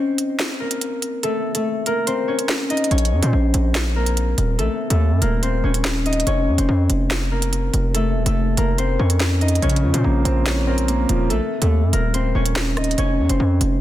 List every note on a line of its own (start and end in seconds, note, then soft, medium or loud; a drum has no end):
0.00 0.60 A#3 medium
0.00 2.07 C4 medium
0.00 2.06 D#4 medium
0.00 0.60 A#4 medium
0.00 1.85 C5 medium
0.00 1.13 D#5 medium
0.18 closed hi-hat medium
0.39 snare loud
0.39 clap medium
0.39 closed hi-hat medium
0.60 1.29 A#3 medium
0.60 1.29 A#4 medium
0.71 closed hi-hat medium
0.81 closed hi-hat medium
1.02 closed hi-hat medium
1.23 1.55 A3 medium
1.23 1.54 A4 loud
1.23 closed hi-hat medium
1.55 1.93 A3 medium
1.55 1.93 A4 medium
1.55 closed hi-hat medium
1.86 3.96 A#3 medium
1.86 3.95 A#4 medium
1.86 closed hi-hat medium
2.07 2.34 C4 medium
2.07 2.34 C5 medium
2.07 closed hi-hat medium
2.28 2.92 C#4 medium
2.28 2.91 C#5 medium
2.39 closed hi-hat medium
2.49 snare loud
2.49 clap medium
2.70 5.41 D#4 medium
2.70 4.48 D#5 medium
2.70 closed hi-hat soft
2.77 closed hi-hat soft
2.84 closed hi-hat medium
2.91 3.13 A#1 loud
2.91 3.28 C#4 medium
2.91 3.28 C#5 loud
2.91 closed hi-hat medium
2.98 closed hi-hat medium
3.05 closed hi-hat medium
3.12 3.22 F2 loud
3.22 3.33 A#2 loud
3.22 5.43 C4 medium
3.22 5.20 C5 medium
3.22 closed hi-hat medium
3.33 3.53 A#1 loud
3.54 4.35 A#1 loud
3.54 closed hi-hat medium
3.75 snare loud
3.75 clap medium
3.75 closed hi-hat medium
3.96 4.65 A#3 medium
3.96 4.65 A#4 medium
4.06 closed hi-hat medium
4.17 closed hi-hat medium
4.38 4.60 D#1 loud
4.38 closed hi-hat medium
4.58 4.69 A#1 loud
4.58 4.91 A3 medium
4.58 4.90 A4 loud
4.58 closed hi-hat medium
4.90 5.13 D#2 loud
4.90 5.27 A3 medium
4.90 5.27 A4 medium
4.90 closed hi-hat medium
5.11 5.21 F#2 loud
5.21 5.62 D#1 loud
5.21 7.32 A#3 medium
5.21 7.31 A#4 medium
5.21 closed hi-hat medium
5.42 5.70 C4 medium
5.42 5.70 C5 medium
5.42 closed hi-hat medium
5.64 6.24 D#1 loud
5.64 6.27 C#4 medium
5.64 6.26 C#5 medium
5.74 closed hi-hat medium
5.85 snare loud
5.85 clap loud
6.06 8.77 D#4 medium
6.06 7.84 D#5 medium
6.06 closed hi-hat soft
6.13 closed hi-hat medium
6.20 closed hi-hat medium
6.27 6.49 F1 loud
6.27 6.64 C#4 medium
6.27 6.64 C#5 loud
6.27 closed hi-hat medium
6.48 6.58 F2 loud
6.58 6.68 F1 loud
6.58 8.79 C4 medium
6.58 8.56 C5 medium
6.58 closed hi-hat medium
6.69 6.89 F2 loud
6.90 7.70 F1 loud
6.90 closed hi-hat medium
7.11 snare loud
7.11 clap medium
7.11 closed hi-hat medium
7.31 8.00 A#3 medium
7.31 8.00 A#4 medium
7.42 closed hi-hat medium
7.53 closed hi-hat medium
7.74 8.17 F1 loud
7.74 closed hi-hat medium
7.94 8.26 A3 medium
7.94 8.25 A4 loud
7.94 closed hi-hat medium
8.15 8.25 D#1 loud
8.26 8.56 F1 loud
8.26 8.64 A3 medium
8.26 8.64 A4 medium
8.26 closed hi-hat medium
8.57 8.98 F1 loud
8.57 10.68 A#3 medium
8.57 10.67 A#4 medium
8.57 closed hi-hat medium
8.78 9.05 C4 medium
8.78 9.05 C5 medium
8.78 closed hi-hat medium
8.99 9.60 F2 loud
8.99 9.63 C#4 medium
8.99 9.62 C#5 medium
9.10 closed hi-hat medium
9.20 snare loud
9.20 clap loud
9.41 12.12 D#4 medium
9.41 11.20 D#5 medium
9.41 closed hi-hat soft
9.48 closed hi-hat soft
9.55 closed hi-hat medium
9.62 9.85 A#1 loud
9.62 10.67 C#3 medium
9.62 9.99 C#4 medium
9.62 9.99 C#5 loud
9.62 closed hi-hat medium
9.69 closed hi-hat medium
9.76 closed hi-hat medium
9.83 9.93 F2 loud
9.83 10.88 F3 medium
9.93 10.04 A#2 loud
9.93 12.14 C4 medium
9.93 11.91 C5 medium
9.93 closed hi-hat medium
10.04 10.24 A#1 loud
10.04 10.87 A#3 medium
10.25 11.06 A#1 loud
10.25 10.66 C4 medium
10.25 closed hi-hat medium
10.46 11.30 C#4 loud
10.46 snare loud
10.46 clap medium
10.46 closed hi-hat medium
10.67 11.36 A#3 medium
10.67 11.30 C4 medium
10.67 11.36 A#4 medium
10.78 closed hi-hat medium
10.88 11.30 A#3 medium
10.88 closed hi-hat medium
11.09 11.32 D#1 loud
11.09 11.30 F3 medium
11.09 closed hi-hat medium
11.30 11.40 A#1 loud
11.30 11.62 A3 medium
11.30 11.61 A4 medium
11.30 closed hi-hat medium
11.62 11.84 D#2 loud
11.62 11.99 A3 medium
11.62 11.99 A4 medium
11.62 closed hi-hat medium
11.83 11.93 F#2 loud
11.93 12.33 D#1 loud
11.93 13.81 A#3 medium
11.93 13.81 A#4 medium
11.93 closed hi-hat medium
12.14 12.41 C4 medium
12.14 12.41 C5 medium
12.14 closed hi-hat medium
12.35 12.95 D#1 loud
12.35 12.98 C#4 medium
12.35 12.98 C#5 medium
12.46 closed hi-hat medium
12.56 snare loud
12.56 clap loud
12.77 13.81 D#4 medium
12.77 13.81 D#5 medium
12.77 cross-stick loud
12.77 closed hi-hat soft
12.84 closed hi-hat medium
12.91 closed hi-hat medium
12.98 13.20 F1 loud
12.98 13.35 C#4 medium
12.98 13.35 C#5 loud
12.98 closed hi-hat medium
13.19 13.29 F2 loud
13.29 13.39 F1 loud
13.29 13.81 C4 medium
13.29 13.81 C5 medium
13.29 closed hi-hat medium
13.40 13.60 F2 loud
13.61 13.81 F1 loud
13.61 closed hi-hat medium